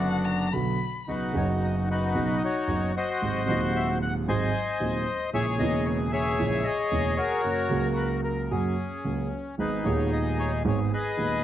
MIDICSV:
0, 0, Header, 1, 4, 480
1, 0, Start_track
1, 0, Key_signature, 5, "major"
1, 0, Tempo, 541516
1, 942, Time_signature, 4, 2, 24, 8
1, 1900, Tempo, 532387
1, 10281, End_track
2, 0, Start_track
2, 0, Title_t, "Violin"
2, 0, Program_c, 0, 40
2, 0, Note_on_c, 0, 78, 80
2, 222, Note_on_c, 0, 82, 81
2, 235, Note_off_c, 0, 78, 0
2, 472, Note_on_c, 0, 83, 90
2, 486, Note_off_c, 0, 82, 0
2, 948, Note_off_c, 0, 83, 0
2, 10281, End_track
3, 0, Start_track
3, 0, Title_t, "Bandoneon"
3, 0, Program_c, 1, 23
3, 0, Note_on_c, 1, 59, 60
3, 0, Note_on_c, 1, 62, 59
3, 0, Note_on_c, 1, 66, 84
3, 429, Note_off_c, 1, 66, 0
3, 430, Note_off_c, 1, 59, 0
3, 432, Note_off_c, 1, 62, 0
3, 958, Note_on_c, 1, 63, 58
3, 963, Note_on_c, 1, 66, 67
3, 976, Note_on_c, 1, 71, 80
3, 1206, Note_off_c, 1, 71, 0
3, 1212, Note_on_c, 1, 73, 80
3, 1314, Note_off_c, 1, 73, 0
3, 1452, Note_on_c, 1, 75, 73
3, 1553, Note_off_c, 1, 75, 0
3, 1675, Note_off_c, 1, 63, 0
3, 1676, Note_off_c, 1, 66, 0
3, 1688, Note_on_c, 1, 63, 63
3, 1689, Note_on_c, 1, 66, 67
3, 1694, Note_on_c, 1, 71, 91
3, 2105, Note_off_c, 1, 71, 0
3, 2106, Note_on_c, 1, 75, 72
3, 2152, Note_off_c, 1, 66, 0
3, 2154, Note_off_c, 1, 75, 0
3, 2166, Note_on_c, 1, 66, 70
3, 2173, Note_on_c, 1, 73, 89
3, 2598, Note_off_c, 1, 63, 0
3, 2606, Note_off_c, 1, 73, 0
3, 2630, Note_off_c, 1, 66, 0
3, 2643, Note_on_c, 1, 66, 75
3, 2647, Note_on_c, 1, 75, 91
3, 2648, Note_on_c, 1, 72, 66
3, 3105, Note_off_c, 1, 75, 0
3, 3119, Note_on_c, 1, 75, 96
3, 3223, Note_off_c, 1, 75, 0
3, 3362, Note_on_c, 1, 76, 98
3, 3465, Note_off_c, 1, 76, 0
3, 3556, Note_off_c, 1, 66, 0
3, 3558, Note_off_c, 1, 72, 0
3, 3593, Note_on_c, 1, 78, 112
3, 3698, Note_off_c, 1, 78, 0
3, 3832, Note_on_c, 1, 80, 99
3, 3834, Note_on_c, 1, 72, 68
3, 3834, Note_on_c, 1, 75, 70
3, 4505, Note_off_c, 1, 80, 0
3, 4744, Note_off_c, 1, 72, 0
3, 4744, Note_off_c, 1, 75, 0
3, 4781, Note_on_c, 1, 76, 122
3, 4784, Note_on_c, 1, 73, 82
3, 4785, Note_on_c, 1, 68, 92
3, 4886, Note_off_c, 1, 76, 0
3, 5009, Note_on_c, 1, 75, 109
3, 5235, Note_off_c, 1, 73, 0
3, 5249, Note_on_c, 1, 73, 93
3, 5257, Note_off_c, 1, 75, 0
3, 5357, Note_off_c, 1, 73, 0
3, 5481, Note_off_c, 1, 68, 0
3, 5483, Note_on_c, 1, 76, 121
3, 5495, Note_on_c, 1, 68, 89
3, 5499, Note_on_c, 1, 73, 83
3, 5953, Note_on_c, 1, 75, 117
3, 5958, Note_off_c, 1, 68, 0
3, 5971, Note_on_c, 1, 68, 77
3, 5976, Note_off_c, 1, 76, 0
3, 6411, Note_off_c, 1, 73, 0
3, 6428, Note_on_c, 1, 73, 100
3, 6442, Note_on_c, 1, 66, 67
3, 6442, Note_on_c, 1, 70, 64
3, 6452, Note_off_c, 1, 75, 0
3, 6650, Note_off_c, 1, 68, 0
3, 7120, Note_off_c, 1, 73, 0
3, 7146, Note_on_c, 1, 71, 82
3, 7258, Note_off_c, 1, 71, 0
3, 7367, Note_off_c, 1, 66, 0
3, 7367, Note_off_c, 1, 70, 0
3, 7397, Note_on_c, 1, 70, 84
3, 7640, Note_on_c, 1, 68, 72
3, 7649, Note_off_c, 1, 70, 0
3, 7650, Note_on_c, 1, 61, 57
3, 8334, Note_off_c, 1, 68, 0
3, 8581, Note_off_c, 1, 61, 0
3, 8618, Note_on_c, 1, 71, 95
3, 8619, Note_on_c, 1, 63, 71
3, 8624, Note_on_c, 1, 68, 72
3, 8841, Note_off_c, 1, 71, 0
3, 8851, Note_on_c, 1, 73, 97
3, 9078, Note_off_c, 1, 73, 0
3, 9097, Note_on_c, 1, 75, 96
3, 9322, Note_off_c, 1, 75, 0
3, 9340, Note_on_c, 1, 73, 109
3, 9449, Note_off_c, 1, 73, 0
3, 9549, Note_off_c, 1, 63, 0
3, 9551, Note_off_c, 1, 68, 0
3, 9593, Note_on_c, 1, 68, 64
3, 9595, Note_on_c, 1, 73, 88
3, 9701, Note_off_c, 1, 73, 0
3, 9812, Note_off_c, 1, 68, 0
3, 9825, Note_on_c, 1, 68, 72
3, 9828, Note_on_c, 1, 71, 70
3, 9834, Note_on_c, 1, 75, 101
3, 10275, Note_off_c, 1, 75, 0
3, 10281, Note_off_c, 1, 68, 0
3, 10281, Note_off_c, 1, 71, 0
3, 10281, End_track
4, 0, Start_track
4, 0, Title_t, "Grand piano"
4, 0, Program_c, 2, 0
4, 0, Note_on_c, 2, 30, 75
4, 0, Note_on_c, 2, 42, 68
4, 0, Note_on_c, 2, 50, 61
4, 0, Note_on_c, 2, 54, 62
4, 0, Note_on_c, 2, 59, 54
4, 0, Note_on_c, 2, 66, 70
4, 420, Note_off_c, 2, 50, 0
4, 427, Note_off_c, 2, 54, 0
4, 428, Note_off_c, 2, 42, 0
4, 430, Note_off_c, 2, 30, 0
4, 431, Note_off_c, 2, 59, 0
4, 438, Note_off_c, 2, 66, 0
4, 472, Note_on_c, 2, 50, 67
4, 477, Note_on_c, 2, 47, 78
4, 477, Note_on_c, 2, 59, 62
4, 478, Note_on_c, 2, 35, 72
4, 478, Note_on_c, 2, 54, 61
4, 481, Note_on_c, 2, 66, 72
4, 669, Note_off_c, 2, 50, 0
4, 672, Note_off_c, 2, 35, 0
4, 672, Note_off_c, 2, 47, 0
4, 672, Note_off_c, 2, 54, 0
4, 672, Note_off_c, 2, 59, 0
4, 674, Note_off_c, 2, 66, 0
4, 956, Note_on_c, 2, 49, 41
4, 959, Note_on_c, 2, 47, 42
4, 960, Note_on_c, 2, 54, 38
4, 960, Note_on_c, 2, 63, 45
4, 964, Note_on_c, 2, 35, 43
4, 964, Note_on_c, 2, 59, 36
4, 1151, Note_off_c, 2, 49, 0
4, 1152, Note_off_c, 2, 47, 0
4, 1153, Note_off_c, 2, 54, 0
4, 1153, Note_off_c, 2, 63, 0
4, 1155, Note_off_c, 2, 35, 0
4, 1155, Note_off_c, 2, 59, 0
4, 1177, Note_on_c, 2, 49, 76
4, 1188, Note_on_c, 2, 54, 67
4, 1197, Note_on_c, 2, 30, 78
4, 1197, Note_on_c, 2, 42, 82
4, 1204, Note_on_c, 2, 59, 61
4, 1211, Note_on_c, 2, 63, 85
4, 1862, Note_off_c, 2, 49, 0
4, 1867, Note_off_c, 2, 54, 0
4, 1871, Note_off_c, 2, 30, 0
4, 1872, Note_off_c, 2, 42, 0
4, 1875, Note_off_c, 2, 59, 0
4, 1879, Note_off_c, 2, 63, 0
4, 1902, Note_on_c, 2, 49, 71
4, 1903, Note_on_c, 2, 59, 63
4, 1904, Note_on_c, 2, 35, 77
4, 1904, Note_on_c, 2, 47, 75
4, 1904, Note_on_c, 2, 54, 60
4, 1910, Note_on_c, 2, 63, 85
4, 2102, Note_off_c, 2, 49, 0
4, 2103, Note_off_c, 2, 47, 0
4, 2103, Note_off_c, 2, 54, 0
4, 2103, Note_off_c, 2, 59, 0
4, 2104, Note_off_c, 2, 35, 0
4, 2106, Note_off_c, 2, 63, 0
4, 2378, Note_on_c, 2, 42, 63
4, 2378, Note_on_c, 2, 49, 56
4, 2378, Note_on_c, 2, 59, 52
4, 2380, Note_on_c, 2, 54, 53
4, 2380, Note_on_c, 2, 63, 57
4, 2382, Note_on_c, 2, 30, 66
4, 2582, Note_off_c, 2, 42, 0
4, 2582, Note_off_c, 2, 49, 0
4, 2582, Note_off_c, 2, 59, 0
4, 2583, Note_off_c, 2, 54, 0
4, 2583, Note_off_c, 2, 63, 0
4, 2584, Note_off_c, 2, 30, 0
4, 2870, Note_on_c, 2, 32, 44
4, 2870, Note_on_c, 2, 48, 45
4, 2873, Note_on_c, 2, 44, 47
4, 2873, Note_on_c, 2, 54, 43
4, 2873, Note_on_c, 2, 56, 41
4, 2873, Note_on_c, 2, 63, 49
4, 3068, Note_off_c, 2, 32, 0
4, 3068, Note_off_c, 2, 48, 0
4, 3070, Note_off_c, 2, 44, 0
4, 3070, Note_off_c, 2, 54, 0
4, 3070, Note_off_c, 2, 56, 0
4, 3070, Note_off_c, 2, 63, 0
4, 3085, Note_on_c, 2, 48, 74
4, 3103, Note_on_c, 2, 54, 76
4, 3108, Note_on_c, 2, 27, 87
4, 3108, Note_on_c, 2, 39, 93
4, 3114, Note_on_c, 2, 56, 69
4, 3120, Note_on_c, 2, 63, 88
4, 3776, Note_off_c, 2, 48, 0
4, 3784, Note_off_c, 2, 54, 0
4, 3787, Note_off_c, 2, 27, 0
4, 3787, Note_off_c, 2, 39, 0
4, 3790, Note_off_c, 2, 56, 0
4, 3793, Note_off_c, 2, 63, 0
4, 3824, Note_on_c, 2, 48, 74
4, 3828, Note_on_c, 2, 56, 76
4, 3829, Note_on_c, 2, 44, 93
4, 3830, Note_on_c, 2, 63, 79
4, 3831, Note_on_c, 2, 32, 88
4, 3833, Note_on_c, 2, 54, 66
4, 4023, Note_off_c, 2, 48, 0
4, 4025, Note_off_c, 2, 44, 0
4, 4025, Note_off_c, 2, 56, 0
4, 4026, Note_off_c, 2, 63, 0
4, 4027, Note_off_c, 2, 32, 0
4, 4028, Note_off_c, 2, 54, 0
4, 4295, Note_on_c, 2, 48, 57
4, 4299, Note_on_c, 2, 27, 70
4, 4300, Note_on_c, 2, 39, 63
4, 4301, Note_on_c, 2, 56, 50
4, 4303, Note_on_c, 2, 63, 63
4, 4305, Note_on_c, 2, 54, 51
4, 4496, Note_off_c, 2, 48, 0
4, 4498, Note_off_c, 2, 27, 0
4, 4498, Note_off_c, 2, 39, 0
4, 4499, Note_off_c, 2, 56, 0
4, 4500, Note_off_c, 2, 63, 0
4, 4501, Note_off_c, 2, 54, 0
4, 4774, Note_on_c, 2, 34, 50
4, 4774, Note_on_c, 2, 49, 44
4, 4776, Note_on_c, 2, 56, 38
4, 4777, Note_on_c, 2, 46, 48
4, 4778, Note_on_c, 2, 58, 41
4, 4783, Note_on_c, 2, 64, 51
4, 4974, Note_off_c, 2, 34, 0
4, 4974, Note_off_c, 2, 49, 0
4, 4975, Note_off_c, 2, 56, 0
4, 4976, Note_off_c, 2, 46, 0
4, 4976, Note_off_c, 2, 58, 0
4, 4978, Note_off_c, 2, 64, 0
4, 4997, Note_on_c, 2, 49, 90
4, 5015, Note_on_c, 2, 56, 71
4, 5021, Note_on_c, 2, 28, 87
4, 5023, Note_on_c, 2, 40, 91
4, 5025, Note_on_c, 2, 58, 83
4, 5040, Note_on_c, 2, 64, 96
4, 5685, Note_off_c, 2, 49, 0
4, 5694, Note_off_c, 2, 56, 0
4, 5697, Note_off_c, 2, 28, 0
4, 5698, Note_off_c, 2, 40, 0
4, 5699, Note_off_c, 2, 58, 0
4, 5706, Note_off_c, 2, 64, 0
4, 5731, Note_on_c, 2, 49, 75
4, 5733, Note_on_c, 2, 64, 80
4, 5736, Note_on_c, 2, 34, 86
4, 5736, Note_on_c, 2, 56, 68
4, 5737, Note_on_c, 2, 46, 88
4, 5738, Note_on_c, 2, 58, 71
4, 5929, Note_off_c, 2, 49, 0
4, 5930, Note_off_c, 2, 64, 0
4, 5931, Note_off_c, 2, 34, 0
4, 5931, Note_off_c, 2, 56, 0
4, 5932, Note_off_c, 2, 46, 0
4, 5932, Note_off_c, 2, 58, 0
4, 6199, Note_on_c, 2, 40, 67
4, 6200, Note_on_c, 2, 49, 52
4, 6202, Note_on_c, 2, 58, 46
4, 6203, Note_on_c, 2, 28, 68
4, 6204, Note_on_c, 2, 56, 50
4, 6205, Note_on_c, 2, 64, 56
4, 6402, Note_off_c, 2, 40, 0
4, 6403, Note_off_c, 2, 49, 0
4, 6404, Note_off_c, 2, 28, 0
4, 6404, Note_off_c, 2, 58, 0
4, 6405, Note_off_c, 2, 56, 0
4, 6405, Note_off_c, 2, 64, 0
4, 6677, Note_on_c, 2, 49, 41
4, 6680, Note_on_c, 2, 54, 46
4, 6682, Note_on_c, 2, 58, 38
4, 6685, Note_on_c, 2, 42, 50
4, 6685, Note_on_c, 2, 66, 43
4, 6881, Note_off_c, 2, 49, 0
4, 6884, Note_off_c, 2, 54, 0
4, 6884, Note_off_c, 2, 58, 0
4, 6885, Note_off_c, 2, 42, 0
4, 6885, Note_off_c, 2, 66, 0
4, 6900, Note_on_c, 2, 49, 78
4, 6912, Note_on_c, 2, 54, 73
4, 6914, Note_off_c, 2, 49, 0
4, 6919, Note_on_c, 2, 49, 93
4, 6921, Note_on_c, 2, 37, 88
4, 6922, Note_on_c, 2, 58, 70
4, 6936, Note_on_c, 2, 66, 87
4, 7603, Note_off_c, 2, 54, 0
4, 7606, Note_off_c, 2, 49, 0
4, 7607, Note_off_c, 2, 37, 0
4, 7608, Note_off_c, 2, 58, 0
4, 7615, Note_off_c, 2, 66, 0
4, 7643, Note_on_c, 2, 49, 64
4, 7643, Note_on_c, 2, 54, 83
4, 7646, Note_on_c, 2, 42, 85
4, 7646, Note_on_c, 2, 58, 64
4, 7650, Note_on_c, 2, 66, 75
4, 7846, Note_off_c, 2, 49, 0
4, 7847, Note_off_c, 2, 54, 0
4, 7848, Note_off_c, 2, 42, 0
4, 7848, Note_off_c, 2, 58, 0
4, 7850, Note_off_c, 2, 66, 0
4, 8121, Note_on_c, 2, 49, 60
4, 8126, Note_on_c, 2, 37, 59
4, 8128, Note_on_c, 2, 54, 46
4, 8129, Note_on_c, 2, 58, 44
4, 8130, Note_on_c, 2, 66, 57
4, 8331, Note_off_c, 2, 37, 0
4, 8331, Note_off_c, 2, 49, 0
4, 8332, Note_off_c, 2, 54, 0
4, 8333, Note_off_c, 2, 58, 0
4, 8334, Note_off_c, 2, 66, 0
4, 8604, Note_on_c, 2, 51, 47
4, 8608, Note_on_c, 2, 32, 52
4, 8608, Note_on_c, 2, 44, 45
4, 8609, Note_on_c, 2, 59, 42
4, 8610, Note_on_c, 2, 68, 45
4, 8611, Note_on_c, 2, 56, 40
4, 8812, Note_off_c, 2, 51, 0
4, 8814, Note_off_c, 2, 32, 0
4, 8814, Note_off_c, 2, 44, 0
4, 8815, Note_off_c, 2, 59, 0
4, 8815, Note_off_c, 2, 68, 0
4, 8816, Note_off_c, 2, 56, 0
4, 8838, Note_on_c, 2, 51, 78
4, 8851, Note_on_c, 2, 27, 86
4, 8851, Note_on_c, 2, 56, 70
4, 8856, Note_on_c, 2, 39, 83
4, 8861, Note_on_c, 2, 59, 67
4, 8872, Note_on_c, 2, 68, 78
4, 9537, Note_off_c, 2, 51, 0
4, 9543, Note_off_c, 2, 27, 0
4, 9543, Note_off_c, 2, 56, 0
4, 9546, Note_off_c, 2, 39, 0
4, 9548, Note_off_c, 2, 59, 0
4, 9554, Note_off_c, 2, 68, 0
4, 9564, Note_on_c, 2, 51, 69
4, 9568, Note_on_c, 2, 32, 96
4, 9572, Note_on_c, 2, 44, 93
4, 9572, Note_on_c, 2, 59, 72
4, 9572, Note_on_c, 2, 68, 79
4, 9573, Note_on_c, 2, 56, 66
4, 9776, Note_off_c, 2, 51, 0
4, 9778, Note_off_c, 2, 32, 0
4, 9780, Note_off_c, 2, 44, 0
4, 9780, Note_off_c, 2, 59, 0
4, 9780, Note_off_c, 2, 68, 0
4, 9781, Note_off_c, 2, 56, 0
4, 10041, Note_on_c, 2, 51, 56
4, 10046, Note_on_c, 2, 56, 53
4, 10047, Note_on_c, 2, 27, 58
4, 10047, Note_on_c, 2, 68, 57
4, 10048, Note_on_c, 2, 39, 63
4, 10050, Note_on_c, 2, 59, 48
4, 10253, Note_off_c, 2, 51, 0
4, 10256, Note_off_c, 2, 56, 0
4, 10256, Note_off_c, 2, 68, 0
4, 10257, Note_off_c, 2, 27, 0
4, 10257, Note_off_c, 2, 39, 0
4, 10258, Note_off_c, 2, 59, 0
4, 10281, End_track
0, 0, End_of_file